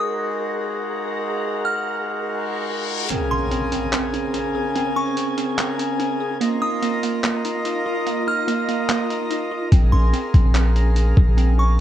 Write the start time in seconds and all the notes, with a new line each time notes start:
Already playing: G#3 D#4 F#4 G#4 A#4 F5 F#5 A#5
0.00 D#6
1.65 F6
2.27 reverse cymbal
3.10 C#3 C4 C#4 G#4 A#4 G#5, closed hi-hat, impact
3.31 C#4 C6
3.51 C4, closed hi-hat
3.72 C4, closed hi-hat
3.93 C4, clap, closed hi-hat
4.14 C#4, closed hi-hat
4.34 C#4, closed hi-hat
4.55 G#4
4.75 C4, closed hi-hat
4.96 C#4 C#6
5.17 C4, closed hi-hat
5.38 C4, closed hi-hat
5.58 C4, clap, closed hi-hat
5.78 C#4, closed hi-hat
6.00 C#4, closed hi-hat
6.20 G#4
6.41 A#3 F4 A#4 D#5 A#5, closed hi-hat
6.62 D#4 D#6
6.82 A#3, closed hi-hat
7.03 A#3, closed hi-hat
7.24 A#3, clap, closed hi-hat
7.45 D#4, closed hi-hat
7.65 D#4, closed hi-hat
7.86 F4
8.07 A#3, closed hi-hat
8.27 D#4 F6
8.48 A#3, closed hi-hat
8.69 A#3, closed hi-hat
8.89 A#3, clap, closed hi-hat
9.10 D#4, closed hi-hat
9.30 D#4, closed hi-hat
9.51 F4
9.72 A#1 C4 C#4 G#4 F5 C6, kick, closed hi-hat
9.92 A#1 C#4 C6
10.13 C4, closed hi-hat
10.34 A#1 C4, kick, closed hi-hat
10.55 C4, clap, closed hi-hat
10.76 C#4, closed hi-hat
10.96 C#4, closed hi-hat
11.17 A#1 G#4, kick
11.37 C4, closed hi-hat
11.58 C#4 C#6